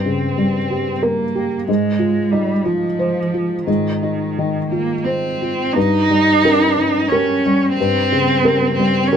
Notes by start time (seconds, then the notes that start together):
Already playing: G2 C4 G4
0.06 C#3
0.38 G3
0.71 G4
1.03 A#3 A#4
1.35 G4
1.67 G#2 G#3
1.99 F4
2.31 G3 D#4
2.64 F3 F4
2.99 C5
3.34 F4
3.65 G#2 D#3
4.03 D#4
4.38 D#3
4.70 A#3 F4
5.05 C4 C5
5.42 F4
5.74 G2 D#4
6.10 G3
6.44 C#4 G4 A#4
6.78 C#4
7.08 C#4 G4 A#4
7.46 G3
7.74 C4
7.80 G2
8.12 C#3
8.44 C#3 G4 A#4
8.75 C4
8.79 G3
9.07 C#4
9.13 C#4 G4 A#4